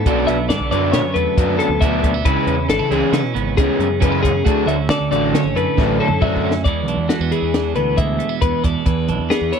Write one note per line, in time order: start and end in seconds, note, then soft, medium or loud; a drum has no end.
0.00 0.28 B3 soft
0.00 0.28 A4 medium
0.06 0.27 B1 medium
0.06 0.50 B2 medium
0.06 0.35 B2 medium
0.06 0.35 F#3 medium
0.06 0.35 B3 medium
0.06 0.48 D4 medium
0.06 0.35 D4 medium
0.06 kick medium
0.06 closed hi-hat medium
0.27 0.51 B1 medium
0.27 0.94 B3 soft
0.27 0.48 E5 medium
0.27 snare soft
0.27 closed hi-hat medium
0.49 0.60 G#2 medium
0.49 2.25 D3 medium
0.49 1.80 D4 medium
0.49 0.70 D5 medium
0.49 snare medium
0.49 closed hi-hat medium
0.60 0.71 B1 medium
0.71 0.92 F#2 medium
0.71 1.01 B2 medium
0.71 1.01 F#3 medium
0.71 1.01 B3 medium
0.71 1.00 D4 medium
0.71 0.92 D5 medium
0.71 closed hi-hat medium
0.92 1.04 B2 medium
0.92 1.58 B3 medium
0.92 1.15 C#5 medium
0.92 snare medium
0.92 closed hi-hat medium
1.04 1.15 F#2 medium
1.14 1.26 E2 medium
1.14 1.81 F#2 medium
1.14 2.02 A3 soft
1.14 1.58 B4 medium
1.14 closed hi-hat medium
1.38 1.58 F#2 medium
1.38 1.66 B2 medium
1.38 1.66 F#3 medium
1.38 1.67 B3 medium
1.38 1.67 D4 medium
1.38 kick loud
1.38 closed hi-hat medium
1.59 2.03 B3 soft
1.59 1.81 A4 medium
1.59 closed hi-hat medium
1.69 2.22 D2 medium
1.81 2.23 B2 medium
1.81 2.10 B2 medium
1.81 2.10 F#3 medium
1.81 2.10 B3 medium
1.81 2.25 D4 medium
1.81 2.11 D4 medium
1.81 2.25 E5 medium
1.81 kick medium
1.81 closed hi-hat medium
2.03 2.14 A3 medium
2.03 kick medium
2.03 closed hi-hat medium
2.14 2.25 B3 soft
2.25 2.36 C#2 medium
2.25 2.69 C#3 medium
2.25 2.54 C#3 medium
2.25 2.54 E3 medium
2.25 2.55 G#3 medium
2.25 2.55 C#4 medium
2.25 2.69 E4 medium
2.25 2.69 B4 medium
2.25 kick medium
2.25 closed hi-hat medium
2.47 2.68 E2 medium
2.47 3.12 C#4 medium
2.47 closed hi-hat medium
2.68 2.79 G#1 medium
2.68 4.42 E3 medium
2.68 2.79 D4 soft
2.68 2.91 A4 medium
2.68 snare medium
2.68 closed hi-hat medium
2.79 2.90 C#3 medium
2.79 4.01 E4 soft
2.91 3.02 C#2 medium
2.91 3.21 C#3 medium
2.91 3.21 E3 medium
2.91 3.20 G#3 medium
2.91 3.20 C#4 medium
2.91 3.13 G#4 medium
2.91 snare soft
2.91 closed hi-hat soft
3.13 3.24 C#3 medium
3.13 3.78 C#4 medium
3.13 3.57 B4 medium
3.13 snare medium
3.13 closed hi-hat medium
3.24 3.35 B2 medium
3.34 3.56 G#1 medium
3.34 3.99 C#3 medium
3.34 4.43 B3 medium
3.34 closed hi-hat medium
3.57 3.68 C#2 medium
3.57 3.86 C#3 medium
3.57 3.86 E3 medium
3.57 3.87 G#3 medium
3.57 3.87 C#4 medium
3.57 4.01 G#4 medium
3.57 kick loud
3.57 closed hi-hat medium
3.79 4.42 F#2 medium
3.79 4.23 C#4 medium
3.79 closed hi-hat medium
4.00 4.42 C#3 medium
4.00 4.30 C#3 medium
4.00 4.30 E3 medium
4.00 4.30 G#3 medium
4.00 4.31 C#4 medium
4.00 4.12 D4 soft
4.00 4.22 B4 medium
4.00 kick loud
4.00 closed hi-hat medium
4.12 4.45 E4 soft
4.23 4.43 C#4 soft
4.23 4.67 G#4 medium
4.23 kick medium
4.23 closed hi-hat medium
4.44 6.20 D2 medium
4.44 4.66 D2 medium
4.44 4.74 D3 medium
4.44 4.74 F#3 medium
4.44 4.75 A3 medium
4.44 4.75 D4 medium
4.44 4.89 F#4 medium
4.44 kick medium
4.44 closed hi-hat medium
4.67 4.89 D2 medium
4.67 5.33 C#4 medium
4.67 4.89 E5 medium
4.67 closed hi-hat medium
4.89 5.00 B2 medium
4.89 6.65 D3 medium
4.89 6.21 A4 medium
4.89 5.10 D5 medium
4.89 snare medium
4.89 closed hi-hat medium
5.00 5.10 D2 medium
5.11 5.32 A1 medium
5.11 5.41 D3 medium
5.11 5.40 F#3 medium
5.11 5.40 A3 medium
5.11 5.40 D4 medium
5.11 5.34 D5 medium
5.11 closed hi-hat medium
5.33 5.46 D3 medium
5.33 6.00 C#4 medium
5.33 5.56 C#5 medium
5.33 snare medium
5.33 closed hi-hat medium
5.44 5.55 A1 medium
5.55 5.66 F#2 medium
5.55 6.66 A2 medium
5.55 6.64 A3 medium
5.55 6.00 B4 medium
5.55 closed hi-hat medium
5.78 5.99 A1 medium
5.78 6.06 D3 medium
5.78 6.06 F#3 medium
5.78 6.07 A3 medium
5.78 6.07 D4 medium
5.78 kick medium
5.78 snare medium
6.00 6.43 C#4 medium
6.00 6.22 A4 medium
6.08 6.62 F#2 medium
6.08 mid tom medium
6.21 6.65 D2 medium
6.21 6.50 D3 medium
6.21 6.50 F#3 medium
6.21 6.50 A3 medium
6.21 6.51 D4 medium
6.21 6.63 F#4 medium
6.21 6.64 E5 medium
6.21 kick medium
6.21 mid tom medium
6.36 kick medium
6.44 6.63 C#4 soft
6.51 snare medium
6.64 8.40 E2 medium
6.64 6.86 E2 medium
6.64 7.31 E3 soft
6.64 7.97 G#3 medium
6.64 7.09 B3 soft
6.64 6.88 D4 medium
6.64 7.09 D5 medium
6.64 kick medium
6.64 closed hi-hat medium
6.86 6.97 B1 medium
6.86 7.54 D4 soft
6.86 closed hi-hat soft
6.97 7.08 E2 medium
7.09 7.21 A3 soft
7.09 7.32 F#4 medium
7.09 snare medium
7.09 closed hi-hat medium
7.20 7.31 E2 medium
7.20 8.18 B3 soft
7.31 9.12 E3 medium
7.31 7.75 G#4 medium
7.31 closed hi-hat soft
7.42 7.74 E2 medium
7.54 8.63 D4 soft
7.54 snare medium
7.54 closed hi-hat medium
7.75 7.97 D2 medium
7.75 8.83 B2 medium
7.75 7.98 B4 medium
7.75 closed hi-hat soft
7.97 8.19 D2 medium
7.97 8.84 G#3 soft
7.97 8.41 E5 medium
7.97 kick medium
7.97 closed hi-hat medium
8.19 8.29 A3 soft
8.19 closed hi-hat medium
8.29 8.85 B3 soft
8.41 8.83 E2 medium
8.41 8.53 E2 medium
8.41 8.64 B4 medium
8.41 kick medium
8.41 closed hi-hat medium
8.64 8.75 E2 medium
8.64 9.08 D4 soft
8.64 8.86 D5 medium
8.64 kick medium
8.64 closed hi-hat medium
8.86 9.60 E2 medium
8.86 9.10 E2 medium
8.86 9.30 B4 medium
8.86 kick medium
8.86 closed hi-hat medium
9.08 9.19 B1 medium
9.08 9.60 D4 soft
9.08 closed hi-hat soft
9.19 9.30 E2 medium
9.30 9.60 B3 medium
9.30 9.52 G#4 medium
9.30 snare medium
9.30 closed hi-hat medium
9.41 9.52 E2 medium
9.52 9.60 E3 medium
9.52 9.60 C#5 medium
9.52 closed hi-hat soft